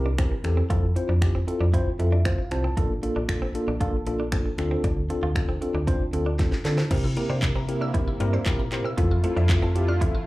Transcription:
Already playing: fm bass C2
0.06 clean electric guitar D4
0.18 tine electric piano C4 E4 G4 A#4, clean electric guitar C4, finger snap, kick, closed hi-hat
0.32 muted clean electric guitar stroke
0.44 fm bass E2, tine electric piano C4 E4 G4 A4, finger snap, closed hi-hat
0.57 clean electric guitar C4
0.70 fm bass F2, tine electric piano C4 E4 F4 A4, clean electric guitar F4, kick, closed hi-hat
0.96 tine electric piano C4 E4 F4 C5, muted clean electric guitar stroke, closed hi-hat
1.09 fm bass F2, clean electric guitar D4
1.22 tine electric piano C4 E4 F4 G4, finger snap, kick, closed hi-hat
1.35 clean electric guitar C4
1.47 tine electric piano C4 E4 F4 A4, muted clean electric guitar stroke, closed hi-hat
1.61 fm bass F2, clean electric guitar D4
1.73 tine electric piano C4 E4 F4 C5, clean electric guitar E4, kick, closed hi-hat
1.99 fm bass F2, tine electric piano C4 E4 F4 A4 E5, muted clean electric guitar stroke, closed hi-hat
2.12 clean electric guitar D4
2.25 tine electric piano C4 E4 F4 C5 F5, clean electric guitar C4, finger snap, kick, closed hi-hat
2.38 muted clean electric guitar stroke
2.51 fm bass C2, tine electric piano C4 E4 F4 C5 A5, finger snap, closed hi-hat
2.64 clean electric guitar C4
2.77 fm bass A#1, tine electric piano A#3 D4 F4 A4, clean electric guitar A#3, kick, closed hi-hat
3.03 tine electric piano A#3 D4 F4 A4, muted clean electric guitar stroke, closed hi-hat
3.16 fm bass A#1, clean electric guitar D4
3.29 tine electric piano A#3 D4 F4 A4, finger snap, kick, closed hi-hat
3.42 clean electric guitar C4
3.54 tine electric piano A#3 D4 F4 A4, muted clean electric guitar stroke, closed hi-hat
3.68 fm bass A#1, clean electric guitar D4
3.81 tine electric piano A#3 D4 F4 A4, clean electric guitar F4, kick, closed hi-hat
4.07 fm bass A#1, tine electric piano A#3 D4 F4 A4, muted clean electric guitar stroke, closed hi-hat
4.20 clean electric guitar D4
4.32 tine electric piano A#3 D4 F4 A4, clean electric guitar C4, finger snap, kick, closed hi-hat
4.46 muted clean electric guitar stroke
4.58 fm bass D2, tine electric piano C4 D4 F4 A4, finger snap, closed hi-hat
4.71 clean electric guitar C4
4.84 fm bass D2, clean electric guitar D4, kick, closed hi-hat
5.10 tine electric piano C4 D4 F4 A4, muted clean electric guitar stroke, closed hi-hat
5.23 fm bass D2, clean electric guitar F4
5.36 tine electric piano C4 D4 F4 A4, finger snap, kick, closed hi-hat
5.49 clean electric guitar C4
5.61 tine electric piano C4 D4 F4 A4, muted clean electric guitar stroke, closed hi-hat
5.74 fm bass D2, clean electric guitar D4
5.87 tine electric piano C4 D4 F4 C5, clean electric guitar C4, kick, closed hi-hat
6.13 fm bass D2, tine electric piano C4 D4 F4 A4, muted clean electric guitar stroke, closed hi-hat
6.26 clean electric guitar D4
6.39 clean electric guitar A3, tine electric piano C4 D4 F4 A4, kick, snare, closed hi-hat
6.52 muted clean electric guitar stroke, snare
6.65 fm bass D3, tine electric piano C4 D4 F4 A4, snare, closed hi-hat
6.78 clean electric guitar C4, snare
6.90 fm bass C3, analog synth pad C3 A#3 E4, synth pluck C3, tine electric piano C4 E4 G4 A#4, clean electric guitar C4, kick, closed hi-hat, crash
7.04 synth pluck E4
7.16 synth pluck A#3, tine electric piano C4 E4 G4 A#4, muted clean electric guitar stroke, closed hi-hat
7.30 fm bass C3, clean electric guitar D4, synth pluck C5
7.42 tine electric piano C4 E4 G4 A#4, synth pluck E4, kick, clap, closed hi-hat
7.56 clean electric guitar C4, synth pluck A#5
7.68 tine electric piano C4 E4 G4 A#4, muted clean electric guitar stroke, closed hi-hat
7.81 clean electric guitar D4, synth pluck E6
7.94 synth pluck C3, tine electric piano C4 E4 G4 A#4, clean electric guitar E4, kick, closed hi-hat
8.08 synth pluck E4
8.20 fm bass G2, synth pluck A#3, tine electric piano C4 E4 G4 A#4, muted clean electric guitar stroke, closed hi-hat
8.33 clean electric guitar D4, synth pluck C5
8.46 fm bass A#2, tine electric piano C4 E4 G4 A#4, clean electric guitar C4, kick, clap, closed hi-hat
8.59 synth pluck A#5, muted clean electric guitar stroke
8.72 tine electric piano C4 E4 G4 A#4, synth pluck C5, clap, closed hi-hat
8.85 clean electric guitar C4, synth pluck E6
8.97 fm bass F2, synth pluck E3, analog synth pad A3 E4 F4, tine electric piano C4 E4 F4 A4, clean electric guitar F4, kick, closed hi-hat
9.11 synth pluck F4
9.23 synth pluck A3, tine electric piano C4 E4 F4 A4, muted clean electric guitar stroke, closed hi-hat
9.37 fm bass F2, clean electric guitar D4, synth pluck E5
9.49 tine electric piano C4 E4 F4 A4, synth pluck F4, kick, clap, closed hi-hat
9.62 clean electric guitar C4, synth pluck A5
9.75 tine electric piano C4 E4 F4 G4, muted clean electric guitar stroke, closed hi-hat
9.88 clean electric guitar D4, synth pluck F6
10.01 synth pluck E3, tine electric piano C4 E4 F4 A4, clean electric guitar E4, kick, closed hi-hat
10.15 synth pluck F4

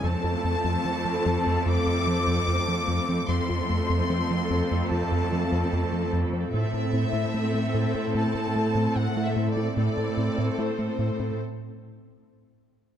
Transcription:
0.04 cello section F2, analog synth bass F2, synth pluck F3, analog synth pad A3 C4 F4 A4, viola section C4 A4, violin section A5
0.24 analog synth bass F2, synth pluck F4
0.44 analog synth bass F2, synth pluck A3
0.64 analog synth bass F2, synth pluck F3
0.85 analog synth bass F3, synth pluck C4
1.05 analog synth bass F3
1.26 analog synth bass F2, synth pluck F3
1.46 analog synth bass F2, synth pluck A3
1.66 analog synth bass F2, synth pluck F3, violin section D6
1.87 analog synth bass F2, synth pluck F4
2.07 analog synth bass F3
2.27 analog synth bass F2, synth pluck F3
2.48 analog synth bass F2
2.68 analog synth bass F3, synth pluck C4
2.88 analog synth bass F2, synth pluck F3
3.09 analog synth bass F3, synth pluck C4
3.28 cello section F2, analog synth bass F2, synth pluck F3, analog synth pad A3 C4 F4 A4, viola section C4 A4, violin section C6
3.49 analog synth bass F2, synth pluck F4
3.69 analog synth bass F2, synth pluck A3
3.90 analog synth bass F2, synth pluck F3
4.10 analog synth bass F3, synth pluck C4
4.31 analog synth bass F3
4.50 analog synth bass F2, synth pluck F3
4.71 analog synth bass F2, synth pluck A3
4.91 analog synth bass F2, synth pluck F3, violin section A5
5.12 analog synth bass F2, synth pluck F4
5.32 analog synth bass F3
5.52 analog synth bass F2, synth pluck F3
5.73 analog synth bass F2
5.92 analog synth bass F3, synth pluck C4
6.13 analog synth bass F2, synth pluck F3
6.33 analog synth bass F3, synth pluck C4
6.52 cello section A2, analog synth bass A2, analog synth pad A3 C4 E4 A4, synth pluck A3, viola section C4 A4, violin section E5
6.74 analog synth bass A2, synth pluck A4
6.93 analog synth bass A2, synth pluck C4
7.13 analog synth bass A2, synth pluck A3
7.34 analog synth bass A3, synth pluck E4
7.54 analog synth bass A3
7.74 analog synth bass A2, synth pluck A3
7.95 analog synth bass A2, synth pluck C4
8.15 analog synth bass A2, synth pluck A3, violin section A5
8.35 analog synth bass A2, synth pluck A4
8.56 analog synth bass A3
8.75 analog synth bass A2, synth pluck A3
8.96 analog synth bass A2, violin section F#5
9.17 analog synth bass A3, synth pluck E4
9.24 violin section E5
9.36 analog synth bass A2, synth pluck A3
9.50 violin section D5
9.57 analog synth bass A3, synth pluck E4
9.76 cello section A2, analog synth bass A2, analog synth pad A3 C4 E4 A4, synth pluck A3, viola section C4 A4, violin section D5
9.97 analog synth bass A2, synth pluck A4
10.17 analog synth bass A2, synth pluck C4
10.38 analog synth bass A2, synth pluck A3
10.58 analog synth bass A3, synth pluck E4, violin section C5
10.79 analog synth bass A3
10.99 analog synth bass A2, synth pluck A3
11.20 analog synth bass A2, synth pluck C4

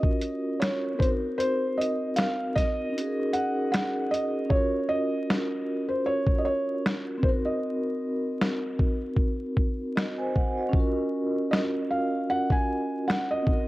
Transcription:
Already playing: vibraphone C#4 F4 F#4 A#4, felt piano D#5
0.03 kick
0.21 closed hi-hat
0.60 felt piano C#5, finger snap, snare, closed hi-hat
0.94 vibraphone C4 D#4
0.99 vibraphone F#4, felt piano C5, kick, closed hi-hat
1.05 vibraphone A#4
1.38 felt piano C5, closed hi-hat
1.78 felt piano D#5, closed hi-hat
2.16 felt piano F5, finger snap, snare, closed hi-hat
2.56 felt piano D#5, kick, snare, closed hi-hat
2.90 vibraphone C#4 D#4
2.97 vibraphone F#4 G#4, closed hi-hat
3.06 vibraphone A#4
3.33 felt piano F#5, closed hi-hat
3.72 felt piano F#5, finger snap, snare, closed hi-hat
4.11 felt piano D#5, closed hi-hat
4.46 vibraphone C#4 F4
4.50 vibraphone F#4, felt piano C#5, kick
4.56 vibraphone A#4
4.89 felt piano D#5
5.30 finger snap, snare
5.89 felt piano C5
6.06 felt piano C#5
6.27 kick
6.38 felt piano D#5
6.45 felt piano C#5
6.86 finger snap, snare
7.18 vibraphone C4 D#4
7.23 vibraphone F#4, felt piano C5, kick
7.28 vibraphone A#4
7.45 felt piano D#5
8.41 finger snap, snare
8.79 kick
9.17 kick
9.57 kick
9.96 vibraphone F#4 D#5, finger snap, snare
10.18 vibraphone C5 G#5
10.35 vibraphone F#5, kick
10.58 vibraphone F#4 D#5
10.69 vibraphone C#4 F4
10.73 vibraphone F#4, kick
10.80 vibraphone A#4
11.51 felt piano D#5, finger snap, snare
11.91 felt piano F5
12.30 felt piano F#5
12.50 felt piano G#5, kick
13.08 felt piano F#5, finger snap, snare
13.31 felt piano D#5
13.42 vibraphone C4 D#4
13.47 vibraphone F#4, kick
13.52 vibraphone A#4

